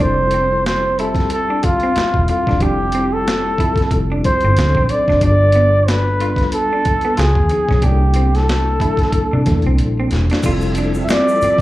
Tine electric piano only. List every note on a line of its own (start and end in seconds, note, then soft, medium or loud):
0.00 0.80 G3 medium
0.00 0.80 C4 medium
0.00 0.80 E4 medium
0.00 0.80 F4 medium
0.00 0.80 A4 medium
0.98 2.02 G3 medium
0.98 2.03 C4 medium
0.98 2.03 F4 medium
0.98 2.03 G4 medium
0.98 2.03 E5 medium
2.29 2.56 G3 medium
2.29 2.56 C4 medium
2.29 2.56 E4 medium
2.29 2.56 F4 soft
2.29 2.56 A4 medium
2.62 3.41 G3 medium
2.62 3.41 C4 medium
2.62 3.41 E4 medium
2.62 3.42 F4 medium
2.62 3.42 G4 medium
3.59 4.13 G3 medium
3.59 4.13 C4 medium
3.59 4.13 E4 medium
3.59 4.14 F4 medium
3.59 4.14 A4 medium
4.24 4.57 G3 medium
4.24 4.56 C4 medium
4.24 4.57 E4 medium
4.24 4.57 F4 medium
4.24 4.57 A4 medium
4.57 4.64 F3 medium
4.57 5.11 C4 medium
4.57 5.11 D4 medium
4.57 5.12 D#4 medium
4.57 5.12 A4 medium
4.63 5.14 F#3 medium
5.22 6.01 G3 medium
5.22 6.02 B3 medium
5.22 6.02 D4 medium
5.22 6.02 F4 medium
5.22 5.30 G4 medium
5.30 6.06 A4 medium
6.20 7.17 G3 medium
6.20 7.18 B3 medium
6.20 7.18 D4 medium
6.20 7.18 F4 medium
6.20 7.18 A4 medium
7.51 7.77 F3 medium
7.51 7.78 B3 medium
7.51 7.78 C#4 medium
7.51 7.78 D#4 medium
7.51 7.78 G#4 medium
7.83 8.63 G3 medium
7.83 8.63 A#3 medium
7.83 8.63 D4 medium
7.83 8.63 E4 medium
7.83 7.91 G4 medium
7.92 8.67 A4 medium
8.81 9.35 G3 medium
8.81 9.35 A#3 medium
8.81 9.35 D4 medium
8.81 9.35 E4 medium
8.81 9.36 A4 medium
9.47 10.26 G3 medium
9.47 10.26 A#3 medium
9.47 10.26 D4 medium
9.47 10.26 E4 medium
9.47 10.27 A4 medium
10.44 10.83 G3 loud
10.44 10.84 C4 loud
10.44 10.84 E4 loud
10.44 10.84 F4 loud
10.44 10.84 A4 loud
10.96 11.33 G3 medium
10.96 11.33 C4 medium
10.96 11.33 E4 medium
10.96 11.34 F4 medium
10.96 11.34 A4 medium
11.42 11.56 G3 medium
11.42 11.57 C4 medium
11.42 11.57 E4 medium
11.42 11.57 F4 medium
11.42 11.57 A4 medium